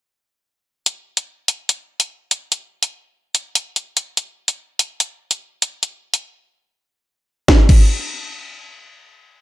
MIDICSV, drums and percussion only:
0, 0, Header, 1, 2, 480
1, 0, Start_track
1, 0, Tempo, 413793
1, 1001, Time_signature, 4, 2, 24, 8
1, 10919, End_track
2, 0, Start_track
2, 0, Title_t, "Drums"
2, 1001, Note_on_c, 9, 42, 82
2, 1117, Note_off_c, 9, 42, 0
2, 1358, Note_on_c, 9, 42, 72
2, 1474, Note_off_c, 9, 42, 0
2, 1720, Note_on_c, 9, 42, 77
2, 1836, Note_off_c, 9, 42, 0
2, 1962, Note_on_c, 9, 42, 84
2, 2078, Note_off_c, 9, 42, 0
2, 2318, Note_on_c, 9, 42, 73
2, 2434, Note_off_c, 9, 42, 0
2, 2682, Note_on_c, 9, 42, 80
2, 2798, Note_off_c, 9, 42, 0
2, 2921, Note_on_c, 9, 42, 82
2, 3037, Note_off_c, 9, 42, 0
2, 3278, Note_on_c, 9, 42, 72
2, 3394, Note_off_c, 9, 42, 0
2, 3882, Note_on_c, 9, 42, 80
2, 3998, Note_off_c, 9, 42, 0
2, 4123, Note_on_c, 9, 42, 81
2, 4239, Note_off_c, 9, 42, 0
2, 4363, Note_on_c, 9, 42, 64
2, 4479, Note_off_c, 9, 42, 0
2, 4601, Note_on_c, 9, 42, 87
2, 4717, Note_off_c, 9, 42, 0
2, 4840, Note_on_c, 9, 42, 80
2, 4956, Note_off_c, 9, 42, 0
2, 5197, Note_on_c, 9, 42, 72
2, 5313, Note_off_c, 9, 42, 0
2, 5560, Note_on_c, 9, 42, 77
2, 5676, Note_off_c, 9, 42, 0
2, 5802, Note_on_c, 9, 42, 87
2, 5918, Note_off_c, 9, 42, 0
2, 6158, Note_on_c, 9, 42, 73
2, 6274, Note_off_c, 9, 42, 0
2, 6521, Note_on_c, 9, 42, 82
2, 6637, Note_off_c, 9, 42, 0
2, 6760, Note_on_c, 9, 42, 81
2, 6876, Note_off_c, 9, 42, 0
2, 7118, Note_on_c, 9, 42, 72
2, 7234, Note_off_c, 9, 42, 0
2, 8681, Note_on_c, 9, 36, 102
2, 8681, Note_on_c, 9, 38, 86
2, 8797, Note_off_c, 9, 36, 0
2, 8797, Note_off_c, 9, 38, 0
2, 8921, Note_on_c, 9, 36, 101
2, 8921, Note_on_c, 9, 49, 83
2, 9037, Note_off_c, 9, 36, 0
2, 9037, Note_off_c, 9, 49, 0
2, 10919, End_track
0, 0, End_of_file